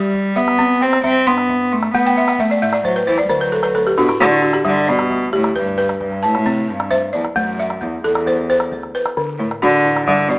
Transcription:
Already playing: G3 G4 E5
0.14 calabash thump
0.36 D2 B3 E5, calabash click
0.48 calabash click
0.59 C2 C4, calabash thump, calabash click
0.81 C4 G5
0.93 calabash click
1.04 C2 C4 E5, calabash thump, calabash click
1.27 G2 B3 C6
1.38 calabash click
1.49 calabash thump
1.72 A3
1.83 calabash click
1.94 A1 A3 B3 F#5, calabash thump, calabash click
2.05 G5, calabash click
2.17 E5, calabash click
2.28 F#5, calabash click
2.39 A3 E5, calabash thump
2.50 D5, calabash click
2.62 A2 A3 E5
2.73 D5, calabash click
2.84 F#3 C5, calabash thump
2.96 B4, calabash click
3.07 E2 E3 C5
3.18 D5, calabash click
3.23 G3
3.29 D2 D3 F#3 C5, calabash thump
3.40 B4, calabash click
3.52 A4
3.63 B4, calabash click
3.75 D2 A4, calabash thump
3.87 G4
3.98 A2 B2 D4 F#4
4.09 E4, calabash click
4.20 D3 F#4, calabash thump
4.31 E4
4.42 F#4, calabash click
4.53 G4, calabash click
4.65 G2 D3 G3, calabash thump
4.87 B2 D5
4.99 calabash click
5.10 D2, calabash thump
5.33 D2 A2 G4
5.44 calabash click
5.55 G2 B4, calabash thump
5.78 B4
5.89 calabash click
6.01 C2 G2, calabash thump
6.12 calabash click
6.23 A2 A5
6.35 calabash click
6.46 C3 C4, calabash thump
6.68 G2
6.80 calabash click
6.91 C5 E5, calabash thump
7.13 B1 E2 D5
7.25 calabash click
7.36 A1 F#2 A3, calabash thump
7.59 E5
7.70 calabash click
7.81 E2, calabash thump
8.04 E2 A4
8.15 calabash click
8.27 C5, calabash thump
8.50 C5
8.60 calabash click
8.72 D2, calabash thump
8.83 calabash click
8.95 B4
9.06 calabash click
9.17 D3, calabash thump
9.39 A2
9.51 calabash click
9.62 D3 D4 F#4, calabash thump
9.85 A2 E4
9.97 calabash click
10.07 G2 D3 G3, calabash thump
10.29 B2 D5

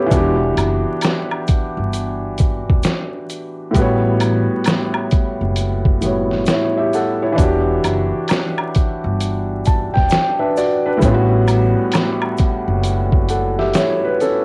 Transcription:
Already playing: B3 C#4 E4 G4 A4 B4 C#5 E5 F#5
0.06 E3 D4
0.11 E1 F#4, kick, closed hi-hat, shaker
0.17 G4
0.57 F#1, closed hi-hat, high woodblock, shaker
1.01 snare, closed hi-hat, high woodblock, shaker
1.31 high woodblock
1.47 kick, closed hi-hat, shaker
1.77 G1
1.93 closed hi-hat, shaker
2.38 kick, closed hi-hat, shaker
2.70 E1, kick
2.83 snare, closed hi-hat, shaker
3.30 closed hi-hat, shaker
3.71 A2 G3, kick, closed hi-hat
3.75 A1 B3 F#4, shaker
3.81 C#5
4.20 closed hi-hat, high woodblock, shaker
4.64 snare, closed hi-hat, high woodblock, shaker
4.94 high woodblock
5.11 kick, closed hi-hat, shaker
5.41 F#1
5.56 closed hi-hat, shaker
5.85 kick
6.01 A2 G3 B3 F#4, closed hi-hat, shaker
6.06 C#5
6.31 snare
6.46 E4 C#5, snare, closed hi-hat, shaker
6.77 G4 E5
6.93 A4 F#5, open hi-hat, shaker
7.22 E4 C#5
7.32 E3 D4
7.38 E1 F#4, kick, closed hi-hat, shaker
7.43 G4
7.84 F#1, closed hi-hat, high woodblock, shaker
8.28 snare, closed hi-hat, high woodblock, shaker
8.58 high woodblock
8.75 kick, closed hi-hat, shaker
9.04 G1
9.20 closed hi-hat, shaker
9.65 A5, kick, closed hi-hat, shaker
9.94 E1 G5, kick, snare
10.10 G5, snare, closed hi-hat, shaker
10.39 D4 B4 E5
10.57 F#4 D5, open hi-hat, shaker
10.86 D4 B4
10.97 A2 G3
11.02 A1 B3 C#4, kick, closed hi-hat, shaker
11.08 F4
11.14 F#4
11.48 closed hi-hat, high woodblock, shaker
11.92 snare, closed hi-hat, high woodblock, shaker
12.22 high woodblock
12.37 kick, closed hi-hat, shaker
12.68 F#1
12.83 closed hi-hat, shaker
13.12 kick
13.29 A4 F#5, closed hi-hat, shaker
13.59 G4 E5, snare
13.73 E4 C#5, snare, closed hi-hat, shaker
14.05 B4
14.20 C#4 A4, open hi-hat, shaker

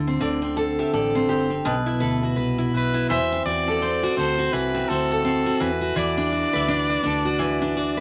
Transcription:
Already playing: D2 D3
0.07 C4
0.20 D2 D3 D5
0.42 C4
0.57 A4
0.79 G4 E5
0.93 A1 A4 D5
1.15 C4
1.29 G1 G4 C5
1.50 C4
1.65 B1 B2 B4
1.86 E4
2.00 D2 A4 B4
2.23 F#4
2.36 C2 B4
2.58 E4
2.74 B1 F#4 B4
2.94 E4
3.09 E2 E3 C5 E5
3.32 C4
3.45 E2 F#4 D5
3.68 A4 D5
3.82 C4 C5
4.03 F#4
4.17 D2 C4 A4 C5
4.39 F#4
4.53 C2 E3 B4
4.74 C4
4.88 D2 F#4 A4 C5
5.11 A4
5.24 C4
5.46 F#4
5.60 E2 E3 B4
5.81 F#4
5.96 E2 E3 D5
6.18 D4
6.32 F#4
6.53 D2 B4 E5
6.68 D4 D5
6.89 F#4
7.03 D2 D4 A4
7.25 F#4
7.39 E3 B4
7.62 D4
7.76 F#4 D5
7.97 B4

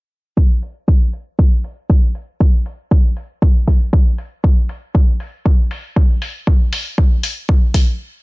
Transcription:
0.37 kick
0.62 open hi-hat
0.88 kick
1.13 open hi-hat
1.39 kick
1.64 open hi-hat
1.90 kick
2.15 open hi-hat
2.40 kick
2.66 open hi-hat
2.91 kick
3.17 open hi-hat
3.42 kick
3.67 kick, open hi-hat
3.93 kick
4.18 open hi-hat
4.44 kick
4.69 open hi-hat
4.95 kick
5.20 open hi-hat
5.46 kick
5.71 open hi-hat
5.96 kick
6.22 open hi-hat
6.47 kick
6.73 open hi-hat
6.98 kick
7.23 open hi-hat
7.49 kick
7.74 kick, open hi-hat

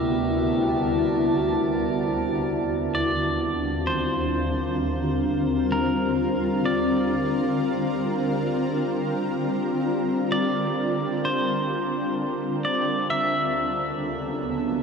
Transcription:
Already playing: D2 C3 G3 B3 E4 F#4 A#4 E5 A5 D6
2.04 D#2
2.24 D3
2.29 F4
2.37 G3
2.91 C4 D5
3.60 A#4
3.87 C5
5.72 A#4
6.65 D5
10.32 D5
11.25 C5
12.65 D5
13.10 D2 E5
13.25 C#3
13.34 A4
13.43 B3
13.73 F#3
14.28 E4

